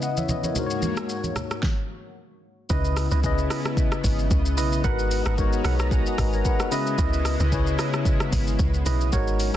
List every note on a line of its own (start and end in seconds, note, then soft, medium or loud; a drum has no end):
0.00 0.24 C#3 medium
0.00 0.53 C#3 medium
0.00 1.59 G#3 medium
0.00 0.52 B3 medium
0.00 0.24 C#4 medium
0.00 0.25 E4 medium
0.00 0.53 E4 medium
0.00 0.31 B4 medium
0.00 0.04 D#5 medium
0.00 0.53 D#5 medium
0.00 0.17 D#5 medium
0.00 0.17 F#5 medium
0.00 shaker medium
0.17 0.29 C#5 medium
0.17 0.29 E5 medium
0.17 high conga medium
0.17 shaker soft
0.29 0.44 B4 medium
0.29 0.44 D#5 medium
0.29 high conga medium
0.29 low conga medium
0.29 shaker medium
0.43 0.57 A#4 soft
0.43 0.65 C#5 medium
0.43 high conga medium
0.43 shaker soft
0.54 1.62 G#2 medium
0.54 1.60 G#3 medium
0.54 1.62 A#3 medium
0.54 1.60 D#4 medium
0.54 1.62 F#4 medium
0.54 1.61 F#4 medium
0.54 1.62 C#5 medium
0.54 low conga medium
0.54 shaker medium
0.58 1.62 A#4 medium
0.58 0.65 C5 medium
0.66 1.66 C#5 medium
0.66 shaker medium
0.82 high conga medium
0.82 shaker medium
0.97 cross-stick medium
0.97 shaker medium
1.09 shaker medium
1.24 high conga medium
1.24 shaker medium
1.36 cross-stick medium
1.36 low conga medium
1.36 shaker medium
1.51 cross-stick medium
1.51 shaker soft
1.63 kick loud
1.63 snare medium
2.69 3.08 C#2 loud
2.69 3.14 C#3 medium
2.69 4.82 C#3 medium
2.69 9.57 G#3 medium
2.69 4.82 B3 medium
2.69 3.14 C#4 medium
2.69 2.78 D#4 medium
2.69 4.82 E4 loud
2.69 3.08 E4 loud
2.69 3.08 B4 medium
2.69 3.15 B4 medium
2.69 6.68 D#5 medium
2.69 3.08 D#5 loud
2.69 3.15 D#5 medium
2.69 kick loud
2.69 shaker medium
2.77 3.18 E4 medium
2.85 shaker medium
2.97 cross-stick medium
2.97 open hi-hat soft
2.97 shaker medium
3.11 3.47 C#2 loud
3.11 3.20 E4 medium
3.11 3.20 B4 medium
3.11 3.20 D#5 medium
3.11 shaker medium
3.23 4.09 C#3 medium
3.23 4.10 C#4 medium
3.23 4.10 E4 medium
3.23 4.11 B4 medium
3.23 4.11 D#5 loud
3.23 kick medium
3.23 shaker medium
3.38 shaker medium
3.50 3.61 E4 medium
3.50 3.61 B4 medium
3.50 3.61 D#5 medium
3.50 cross-stick loud
3.50 open hi-hat medium
3.50 shaker medium
3.65 cross-stick loud
3.65 shaker medium
3.77 kick loud
3.77 shaker medium
3.92 cross-stick loud
3.92 shaker soft
4.04 4.29 G#1 medium
4.04 kick loud
4.04 open hi-hat medium
4.04 shaker loud
4.19 shaker medium
4.31 4.59 C#2 loud
4.31 kick loud
4.31 shaker medium
4.46 shaker medium
4.57 4.82 B1 loud
4.57 4.82 E4 medium
4.57 4.82 B4 medium
4.57 4.83 D#5 medium
4.57 open hi-hat medium
4.57 shaker medium
4.72 shaker medium
4.83 5.23 G#1 loud
4.83 5.28 G#3 medium
4.83 6.70 B3 loud
4.83 5.28 D#4 medium
4.83 6.70 F#4 medium
4.83 5.29 F#4 medium
4.83 5.22 A#4 loud
4.83 5.29 A#4 medium
4.83 5.22 B4 loud
4.83 5.29 B4 medium
4.83 5.22 F#5 loud
4.83 6.70 A#5 medium
4.83 kick loud
4.83 shaker medium
4.99 shaker medium
5.11 open hi-hat medium
5.11 shaker medium
5.25 5.62 G#1 medium
5.25 5.34 A#4 medium
5.25 5.35 B4 medium
5.25 5.35 F#5 medium
5.25 cross-stick loud
5.25 shaker medium
5.37 6.24 G#3 medium
5.37 6.24 D#4 medium
5.37 5.92 F#4 medium
5.37 5.92 A#4 medium
5.37 5.93 C#5 loud
5.37 kick medium
5.37 shaker medium
5.53 shaker medium
5.64 6.03 B1 medium
5.64 5.75 A#4 medium
5.64 5.75 B4 medium
5.64 5.76 F#5 medium
5.64 cross-stick loud
5.64 open hi-hat medium
5.64 shaker medium
5.79 cross-stick loud
5.79 shaker medium
5.91 6.06 G#5 medium
5.91 kick loud
5.91 shaker medium
6.06 6.18 D#5 medium
6.06 6.18 F#5 medium
6.06 shaker soft
6.18 6.43 G#1 loud
6.18 6.33 B4 medium
6.18 6.33 D#5 medium
6.18 kick loud
6.18 cross-stick medium
6.18 open hi-hat medium
6.18 shaker loud
6.33 6.45 A#4 medium
6.33 6.45 C#5 medium
6.33 shaker medium
6.45 6.60 G#4 medium
6.45 6.60 B4 medium
6.45 6.70 F#5 medium
6.45 kick loud
6.45 shaker medium
6.60 6.86 F#4 medium
6.60 6.86 A#4 medium
6.60 cross-stick loud
6.60 shaker medium
6.71 7.37 C#3 loud
6.71 9.11 C#3 medium
6.71 9.11 B3 medium
6.71 7.37 C#4 medium
6.71 6.96 E4 medium
6.71 9.11 E4 medium
6.71 7.38 E4 medium
6.71 6.97 B4 medium
6.71 7.38 B4 medium
6.71 6.97 D#5 medium
6.71 9.11 D#5 medium
6.71 7.38 D#5 loud
6.71 6.97 E5 medium
6.71 open hi-hat medium
6.71 shaker loud
6.87 shaker medium
6.98 7.37 C#2 loud
6.98 7.36 E4 loud
6.98 7.37 B4 medium
6.98 7.37 D#5 loud
6.98 kick loud
6.98 shaker medium
7.13 shaker medium
7.25 cross-stick medium
7.25 open hi-hat medium
7.25 shaker medium
7.40 7.76 C#2 loud
7.40 7.49 E4 medium
7.40 7.49 B4 medium
7.40 7.49 D#5 medium
7.40 shaker medium
7.51 8.38 C#3 medium
7.51 8.38 C#4 medium
7.51 8.39 E4 medium
7.51 8.39 B4 medium
7.51 8.40 C#5 loud
7.51 kick medium
7.51 shaker medium
7.67 shaker medium
7.79 7.90 E4 medium
7.79 7.90 B4 medium
7.79 7.90 D#5 medium
7.79 cross-stick loud
7.79 open hi-hat medium
7.79 shaker medium
7.93 cross-stick loud
7.93 shaker medium
8.05 kick loud
8.05 shaker medium
8.20 cross-stick loud
8.20 shaker soft
8.32 8.57 G#1 medium
8.32 kick loud
8.32 open hi-hat medium
8.32 shaker loud
8.47 shaker medium
8.59 8.84 C#2 loud
8.59 kick loud
8.59 shaker medium
8.74 shaker medium
8.86 9.11 B1 loud
8.86 9.11 E4 medium
8.86 9.11 B4 medium
8.86 9.11 D#5 medium
8.86 open hi-hat medium
8.86 shaker medium
9.01 shaker medium
9.12 9.51 G#1 loud
9.12 9.57 F#3 medium
9.12 9.56 G#3 medium
9.12 9.57 C#4 medium
9.12 9.57 D#4 medium
9.12 9.51 F#4 loud
9.12 9.57 F#4 medium
9.12 9.51 A#4 medium
9.12 9.57 A#4 medium
9.12 9.51 C#5 loud
9.12 9.57 C#5 loud
9.12 kick loud
9.12 shaker medium
9.27 shaker medium
9.40 open hi-hat medium
9.40 shaker medium